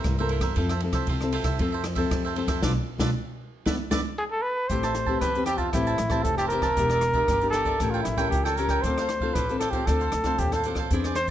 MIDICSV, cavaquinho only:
0, 0, Header, 1, 3, 480
1, 0, Start_track
1, 0, Key_signature, 0, "minor"
1, 0, Tempo, 517241
1, 524, Time_signature, 4, 2, 24, 8
1, 10491, End_track
2, 0, Start_track
2, 0, Title_t, "Cavaquinho"
2, 0, Program_c, 0, 24
2, 0, Note_on_c, 0, 70, 58
2, 0, Note_on_c, 0, 72, 59
2, 0, Note_on_c, 0, 76, 68
2, 144, Note_off_c, 0, 76, 0
2, 151, Note_off_c, 0, 72, 0
2, 152, Note_off_c, 0, 70, 0
2, 172, Note_on_c, 0, 76, 67
2, 186, Note_on_c, 0, 72, 64
2, 192, Note_on_c, 0, 70, 55
2, 279, Note_off_c, 0, 76, 0
2, 280, Note_off_c, 0, 70, 0
2, 282, Note_on_c, 0, 64, 49
2, 286, Note_off_c, 0, 72, 0
2, 291, Note_on_c, 0, 70, 46
2, 299, Note_on_c, 0, 72, 49
2, 299, Note_on_c, 0, 76, 57
2, 368, Note_off_c, 0, 76, 0
2, 379, Note_off_c, 0, 72, 0
2, 379, Note_on_c, 0, 76, 63
2, 383, Note_off_c, 0, 70, 0
2, 390, Note_on_c, 0, 72, 61
2, 393, Note_off_c, 0, 64, 0
2, 394, Note_on_c, 0, 70, 54
2, 502, Note_off_c, 0, 76, 0
2, 508, Note_off_c, 0, 72, 0
2, 510, Note_off_c, 0, 70, 0
2, 519, Note_on_c, 0, 65, 51
2, 526, Note_on_c, 0, 69, 49
2, 531, Note_on_c, 0, 72, 49
2, 536, Note_on_c, 0, 76, 49
2, 632, Note_off_c, 0, 65, 0
2, 633, Note_off_c, 0, 76, 0
2, 636, Note_off_c, 0, 69, 0
2, 638, Note_off_c, 0, 72, 0
2, 644, Note_on_c, 0, 76, 66
2, 657, Note_on_c, 0, 72, 55
2, 664, Note_on_c, 0, 69, 52
2, 744, Note_off_c, 0, 69, 0
2, 753, Note_off_c, 0, 72, 0
2, 754, Note_off_c, 0, 76, 0
2, 864, Note_on_c, 0, 76, 64
2, 876, Note_on_c, 0, 72, 54
2, 881, Note_on_c, 0, 69, 49
2, 984, Note_off_c, 0, 76, 0
2, 990, Note_off_c, 0, 72, 0
2, 993, Note_off_c, 0, 69, 0
2, 1007, Note_on_c, 0, 65, 50
2, 1013, Note_on_c, 0, 69, 51
2, 1015, Note_on_c, 0, 72, 55
2, 1021, Note_on_c, 0, 76, 55
2, 1220, Note_off_c, 0, 65, 0
2, 1229, Note_off_c, 0, 69, 0
2, 1231, Note_on_c, 0, 65, 67
2, 1233, Note_off_c, 0, 72, 0
2, 1240, Note_off_c, 0, 76, 0
2, 1240, Note_on_c, 0, 69, 74
2, 1244, Note_on_c, 0, 72, 73
2, 1251, Note_on_c, 0, 76, 67
2, 1329, Note_off_c, 0, 76, 0
2, 1337, Note_off_c, 0, 72, 0
2, 1340, Note_on_c, 0, 76, 65
2, 1348, Note_off_c, 0, 65, 0
2, 1348, Note_off_c, 0, 69, 0
2, 1348, Note_on_c, 0, 72, 59
2, 1359, Note_on_c, 0, 69, 53
2, 1463, Note_off_c, 0, 76, 0
2, 1466, Note_off_c, 0, 72, 0
2, 1472, Note_off_c, 0, 69, 0
2, 1487, Note_on_c, 0, 65, 46
2, 1497, Note_on_c, 0, 69, 43
2, 1500, Note_on_c, 0, 72, 45
2, 1510, Note_on_c, 0, 76, 45
2, 1587, Note_off_c, 0, 76, 0
2, 1596, Note_off_c, 0, 65, 0
2, 1598, Note_on_c, 0, 76, 61
2, 1601, Note_off_c, 0, 69, 0
2, 1602, Note_off_c, 0, 72, 0
2, 1615, Note_on_c, 0, 72, 59
2, 1616, Note_on_c, 0, 69, 49
2, 1710, Note_off_c, 0, 69, 0
2, 1711, Note_off_c, 0, 76, 0
2, 1714, Note_off_c, 0, 72, 0
2, 1813, Note_on_c, 0, 76, 66
2, 1830, Note_on_c, 0, 72, 62
2, 1835, Note_on_c, 0, 69, 56
2, 2058, Note_off_c, 0, 76, 0
2, 2067, Note_off_c, 0, 72, 0
2, 2070, Note_off_c, 0, 69, 0
2, 2084, Note_on_c, 0, 76, 58
2, 2097, Note_on_c, 0, 72, 64
2, 2108, Note_on_c, 0, 69, 57
2, 2190, Note_off_c, 0, 69, 0
2, 2194, Note_off_c, 0, 76, 0
2, 2195, Note_off_c, 0, 72, 0
2, 2197, Note_on_c, 0, 65, 49
2, 2201, Note_on_c, 0, 69, 54
2, 2206, Note_on_c, 0, 72, 52
2, 2214, Note_on_c, 0, 76, 46
2, 2288, Note_off_c, 0, 76, 0
2, 2299, Note_on_c, 0, 76, 69
2, 2300, Note_off_c, 0, 72, 0
2, 2308, Note_off_c, 0, 69, 0
2, 2310, Note_off_c, 0, 65, 0
2, 2311, Note_on_c, 0, 72, 60
2, 2320, Note_on_c, 0, 69, 57
2, 2421, Note_off_c, 0, 76, 0
2, 2427, Note_off_c, 0, 69, 0
2, 2427, Note_off_c, 0, 72, 0
2, 2436, Note_on_c, 0, 69, 84
2, 2442, Note_on_c, 0, 71, 76
2, 2443, Note_on_c, 0, 74, 82
2, 2516, Note_off_c, 0, 74, 0
2, 2517, Note_off_c, 0, 69, 0
2, 2518, Note_off_c, 0, 71, 0
2, 2784, Note_on_c, 0, 69, 91
2, 2786, Note_on_c, 0, 74, 70
2, 2787, Note_on_c, 0, 71, 85
2, 2867, Note_off_c, 0, 74, 0
2, 2869, Note_off_c, 0, 69, 0
2, 2870, Note_off_c, 0, 71, 0
2, 3393, Note_on_c, 0, 71, 83
2, 3402, Note_on_c, 0, 76, 81
2, 3406, Note_on_c, 0, 74, 69
2, 3475, Note_off_c, 0, 71, 0
2, 3477, Note_off_c, 0, 74, 0
2, 3477, Note_off_c, 0, 76, 0
2, 3627, Note_on_c, 0, 74, 87
2, 3632, Note_on_c, 0, 76, 72
2, 3639, Note_on_c, 0, 71, 75
2, 3711, Note_off_c, 0, 76, 0
2, 3712, Note_off_c, 0, 74, 0
2, 3713, Note_off_c, 0, 71, 0
2, 4364, Note_on_c, 0, 67, 47
2, 4371, Note_on_c, 0, 72, 48
2, 4377, Note_on_c, 0, 76, 46
2, 4379, Note_on_c, 0, 81, 47
2, 4473, Note_off_c, 0, 67, 0
2, 4476, Note_off_c, 0, 72, 0
2, 4477, Note_off_c, 0, 81, 0
2, 4479, Note_off_c, 0, 76, 0
2, 4488, Note_on_c, 0, 81, 64
2, 4499, Note_on_c, 0, 76, 54
2, 4508, Note_on_c, 0, 72, 48
2, 4585, Note_off_c, 0, 72, 0
2, 4587, Note_off_c, 0, 81, 0
2, 4588, Note_off_c, 0, 76, 0
2, 4699, Note_on_c, 0, 81, 57
2, 4707, Note_on_c, 0, 76, 51
2, 4719, Note_on_c, 0, 72, 45
2, 4820, Note_off_c, 0, 81, 0
2, 4824, Note_off_c, 0, 76, 0
2, 4831, Note_off_c, 0, 72, 0
2, 4835, Note_on_c, 0, 67, 42
2, 4846, Note_on_c, 0, 72, 45
2, 4854, Note_on_c, 0, 81, 48
2, 4855, Note_on_c, 0, 76, 44
2, 5058, Note_off_c, 0, 67, 0
2, 5062, Note_off_c, 0, 72, 0
2, 5069, Note_on_c, 0, 67, 53
2, 5070, Note_off_c, 0, 76, 0
2, 5074, Note_on_c, 0, 72, 60
2, 5078, Note_off_c, 0, 81, 0
2, 5081, Note_on_c, 0, 76, 60
2, 5088, Note_on_c, 0, 81, 67
2, 5165, Note_off_c, 0, 81, 0
2, 5170, Note_off_c, 0, 76, 0
2, 5177, Note_on_c, 0, 81, 59
2, 5181, Note_on_c, 0, 76, 52
2, 5184, Note_off_c, 0, 72, 0
2, 5185, Note_off_c, 0, 67, 0
2, 5195, Note_on_c, 0, 72, 52
2, 5299, Note_off_c, 0, 81, 0
2, 5302, Note_off_c, 0, 76, 0
2, 5309, Note_off_c, 0, 72, 0
2, 5317, Note_on_c, 0, 67, 42
2, 5323, Note_on_c, 0, 72, 39
2, 5329, Note_on_c, 0, 76, 44
2, 5334, Note_on_c, 0, 81, 46
2, 5430, Note_off_c, 0, 67, 0
2, 5433, Note_off_c, 0, 72, 0
2, 5435, Note_off_c, 0, 81, 0
2, 5436, Note_off_c, 0, 76, 0
2, 5446, Note_on_c, 0, 81, 63
2, 5456, Note_on_c, 0, 76, 53
2, 5469, Note_on_c, 0, 72, 47
2, 5548, Note_off_c, 0, 72, 0
2, 5548, Note_off_c, 0, 76, 0
2, 5554, Note_off_c, 0, 81, 0
2, 5672, Note_on_c, 0, 81, 67
2, 5680, Note_on_c, 0, 76, 57
2, 5685, Note_on_c, 0, 72, 52
2, 5907, Note_off_c, 0, 81, 0
2, 5911, Note_off_c, 0, 76, 0
2, 5913, Note_off_c, 0, 72, 0
2, 5927, Note_on_c, 0, 81, 67
2, 5939, Note_on_c, 0, 76, 51
2, 5946, Note_on_c, 0, 72, 56
2, 6034, Note_off_c, 0, 72, 0
2, 6035, Note_off_c, 0, 81, 0
2, 6036, Note_off_c, 0, 76, 0
2, 6036, Note_on_c, 0, 67, 43
2, 6045, Note_on_c, 0, 72, 46
2, 6047, Note_on_c, 0, 76, 45
2, 6057, Note_on_c, 0, 81, 52
2, 6139, Note_off_c, 0, 81, 0
2, 6149, Note_off_c, 0, 67, 0
2, 6150, Note_on_c, 0, 81, 67
2, 6151, Note_off_c, 0, 76, 0
2, 6154, Note_off_c, 0, 72, 0
2, 6162, Note_on_c, 0, 76, 55
2, 6169, Note_on_c, 0, 72, 51
2, 6266, Note_off_c, 0, 81, 0
2, 6272, Note_off_c, 0, 76, 0
2, 6276, Note_off_c, 0, 72, 0
2, 6282, Note_on_c, 0, 67, 44
2, 6291, Note_on_c, 0, 70, 46
2, 6301, Note_on_c, 0, 76, 50
2, 6302, Note_on_c, 0, 74, 49
2, 6393, Note_off_c, 0, 67, 0
2, 6397, Note_off_c, 0, 70, 0
2, 6402, Note_off_c, 0, 74, 0
2, 6402, Note_off_c, 0, 76, 0
2, 6420, Note_on_c, 0, 74, 58
2, 6431, Note_on_c, 0, 76, 56
2, 6436, Note_on_c, 0, 70, 47
2, 6518, Note_off_c, 0, 70, 0
2, 6520, Note_off_c, 0, 76, 0
2, 6521, Note_off_c, 0, 74, 0
2, 6629, Note_on_c, 0, 74, 53
2, 6637, Note_on_c, 0, 76, 53
2, 6650, Note_on_c, 0, 70, 50
2, 6746, Note_off_c, 0, 74, 0
2, 6750, Note_off_c, 0, 76, 0
2, 6756, Note_off_c, 0, 70, 0
2, 6770, Note_on_c, 0, 67, 48
2, 6778, Note_on_c, 0, 70, 46
2, 6784, Note_on_c, 0, 76, 45
2, 6790, Note_on_c, 0, 74, 47
2, 6986, Note_off_c, 0, 67, 0
2, 6991, Note_off_c, 0, 70, 0
2, 6994, Note_off_c, 0, 76, 0
2, 6997, Note_on_c, 0, 67, 55
2, 7002, Note_off_c, 0, 74, 0
2, 7002, Note_on_c, 0, 70, 64
2, 7005, Note_on_c, 0, 76, 61
2, 7013, Note_on_c, 0, 74, 66
2, 7095, Note_off_c, 0, 74, 0
2, 7107, Note_off_c, 0, 76, 0
2, 7107, Note_on_c, 0, 74, 65
2, 7110, Note_off_c, 0, 67, 0
2, 7113, Note_off_c, 0, 70, 0
2, 7118, Note_on_c, 0, 76, 59
2, 7126, Note_on_c, 0, 70, 53
2, 7225, Note_off_c, 0, 74, 0
2, 7231, Note_off_c, 0, 76, 0
2, 7235, Note_off_c, 0, 70, 0
2, 7248, Note_on_c, 0, 64, 46
2, 7255, Note_on_c, 0, 69, 47
2, 7259, Note_on_c, 0, 73, 47
2, 7265, Note_on_c, 0, 79, 46
2, 7355, Note_off_c, 0, 79, 0
2, 7356, Note_off_c, 0, 64, 0
2, 7359, Note_off_c, 0, 69, 0
2, 7361, Note_off_c, 0, 73, 0
2, 7367, Note_on_c, 0, 79, 59
2, 7378, Note_on_c, 0, 73, 58
2, 7385, Note_on_c, 0, 69, 51
2, 7467, Note_off_c, 0, 69, 0
2, 7475, Note_off_c, 0, 73, 0
2, 7475, Note_off_c, 0, 79, 0
2, 7586, Note_on_c, 0, 79, 72
2, 7601, Note_on_c, 0, 73, 63
2, 7606, Note_on_c, 0, 69, 55
2, 7825, Note_off_c, 0, 79, 0
2, 7832, Note_off_c, 0, 73, 0
2, 7835, Note_off_c, 0, 69, 0
2, 7842, Note_on_c, 0, 79, 62
2, 7858, Note_on_c, 0, 73, 58
2, 7862, Note_on_c, 0, 69, 51
2, 7953, Note_off_c, 0, 79, 0
2, 7954, Note_off_c, 0, 69, 0
2, 7956, Note_off_c, 0, 73, 0
2, 7959, Note_on_c, 0, 64, 42
2, 7965, Note_on_c, 0, 69, 44
2, 7967, Note_on_c, 0, 73, 52
2, 7973, Note_on_c, 0, 79, 51
2, 8063, Note_off_c, 0, 79, 0
2, 8069, Note_off_c, 0, 73, 0
2, 8072, Note_off_c, 0, 64, 0
2, 8074, Note_off_c, 0, 69, 0
2, 8074, Note_on_c, 0, 79, 62
2, 8080, Note_on_c, 0, 73, 53
2, 8088, Note_on_c, 0, 69, 47
2, 8189, Note_off_c, 0, 79, 0
2, 8192, Note_off_c, 0, 73, 0
2, 8196, Note_off_c, 0, 69, 0
2, 8207, Note_on_c, 0, 62, 46
2, 8216, Note_on_c, 0, 69, 48
2, 8222, Note_on_c, 0, 72, 50
2, 8229, Note_on_c, 0, 77, 55
2, 8316, Note_off_c, 0, 62, 0
2, 8320, Note_off_c, 0, 69, 0
2, 8323, Note_off_c, 0, 72, 0
2, 8327, Note_off_c, 0, 77, 0
2, 8341, Note_on_c, 0, 77, 58
2, 8354, Note_on_c, 0, 72, 57
2, 8363, Note_on_c, 0, 69, 50
2, 8438, Note_off_c, 0, 69, 0
2, 8443, Note_off_c, 0, 77, 0
2, 8444, Note_off_c, 0, 72, 0
2, 8552, Note_on_c, 0, 77, 61
2, 8563, Note_on_c, 0, 72, 52
2, 8574, Note_on_c, 0, 69, 48
2, 8668, Note_off_c, 0, 77, 0
2, 8674, Note_off_c, 0, 72, 0
2, 8680, Note_off_c, 0, 69, 0
2, 8687, Note_on_c, 0, 62, 43
2, 8694, Note_on_c, 0, 69, 47
2, 8702, Note_on_c, 0, 72, 53
2, 8709, Note_on_c, 0, 77, 48
2, 8900, Note_off_c, 0, 62, 0
2, 8911, Note_off_c, 0, 69, 0
2, 8911, Note_on_c, 0, 62, 66
2, 8913, Note_off_c, 0, 72, 0
2, 8919, Note_off_c, 0, 77, 0
2, 8922, Note_on_c, 0, 69, 60
2, 8924, Note_on_c, 0, 72, 69
2, 8930, Note_on_c, 0, 77, 64
2, 9019, Note_off_c, 0, 77, 0
2, 9029, Note_off_c, 0, 62, 0
2, 9029, Note_off_c, 0, 72, 0
2, 9030, Note_on_c, 0, 77, 59
2, 9034, Note_off_c, 0, 69, 0
2, 9040, Note_on_c, 0, 72, 53
2, 9049, Note_on_c, 0, 69, 54
2, 9148, Note_off_c, 0, 77, 0
2, 9153, Note_off_c, 0, 72, 0
2, 9158, Note_off_c, 0, 69, 0
2, 9165, Note_on_c, 0, 62, 42
2, 9170, Note_on_c, 0, 69, 46
2, 9176, Note_on_c, 0, 72, 42
2, 9184, Note_on_c, 0, 77, 46
2, 9267, Note_off_c, 0, 77, 0
2, 9275, Note_off_c, 0, 62, 0
2, 9278, Note_off_c, 0, 69, 0
2, 9278, Note_on_c, 0, 77, 59
2, 9281, Note_off_c, 0, 72, 0
2, 9291, Note_on_c, 0, 72, 50
2, 9303, Note_on_c, 0, 69, 52
2, 9392, Note_off_c, 0, 77, 0
2, 9396, Note_off_c, 0, 69, 0
2, 9396, Note_off_c, 0, 72, 0
2, 9519, Note_on_c, 0, 77, 63
2, 9526, Note_on_c, 0, 72, 59
2, 9533, Note_on_c, 0, 69, 49
2, 9753, Note_off_c, 0, 77, 0
2, 9757, Note_off_c, 0, 72, 0
2, 9760, Note_off_c, 0, 69, 0
2, 9790, Note_on_c, 0, 77, 66
2, 9797, Note_on_c, 0, 72, 58
2, 9806, Note_on_c, 0, 69, 54
2, 9887, Note_off_c, 0, 69, 0
2, 9888, Note_on_c, 0, 62, 43
2, 9889, Note_off_c, 0, 77, 0
2, 9892, Note_off_c, 0, 72, 0
2, 9898, Note_on_c, 0, 69, 46
2, 9906, Note_on_c, 0, 72, 51
2, 9910, Note_on_c, 0, 77, 53
2, 9987, Note_off_c, 0, 77, 0
2, 9995, Note_off_c, 0, 72, 0
2, 9998, Note_off_c, 0, 62, 0
2, 9998, Note_on_c, 0, 77, 60
2, 10003, Note_off_c, 0, 69, 0
2, 10007, Note_on_c, 0, 72, 57
2, 10017, Note_on_c, 0, 69, 56
2, 10113, Note_off_c, 0, 77, 0
2, 10117, Note_off_c, 0, 72, 0
2, 10122, Note_off_c, 0, 69, 0
2, 10142, Note_on_c, 0, 64, 49
2, 10150, Note_on_c, 0, 72, 47
2, 10152, Note_on_c, 0, 68, 48
2, 10160, Note_on_c, 0, 74, 50
2, 10245, Note_off_c, 0, 64, 0
2, 10245, Note_off_c, 0, 74, 0
2, 10249, Note_off_c, 0, 72, 0
2, 10250, Note_off_c, 0, 68, 0
2, 10256, Note_on_c, 0, 74, 68
2, 10263, Note_on_c, 0, 72, 51
2, 10269, Note_on_c, 0, 68, 49
2, 10351, Note_off_c, 0, 68, 0
2, 10359, Note_off_c, 0, 72, 0
2, 10360, Note_off_c, 0, 74, 0
2, 10491, End_track
3, 0, Start_track
3, 0, Title_t, "Muted cavaquinho strokes"
3, 755, Note_on_c, 9, 29, 37
3, 848, Note_off_c, 9, 29, 0
3, 1718, Note_on_c, 9, 29, 36
3, 1811, Note_off_c, 9, 29, 0
3, 4592, Note_on_c, 9, 29, 31
3, 4684, Note_off_c, 9, 29, 0
3, 5553, Note_on_c, 9, 29, 35
3, 5646, Note_off_c, 9, 29, 0
3, 6524, Note_on_c, 9, 29, 36
3, 6616, Note_off_c, 9, 29, 0
3, 7473, Note_on_c, 9, 29, 33
3, 7566, Note_off_c, 9, 29, 0
3, 8445, Note_on_c, 9, 29, 36
3, 8538, Note_off_c, 9, 29, 0
3, 9400, Note_on_c, 9, 29, 34
3, 9493, Note_off_c, 9, 29, 0
3, 10363, Note_on_c, 9, 29, 38
3, 10455, Note_off_c, 9, 29, 0
3, 10491, End_track
0, 0, End_of_file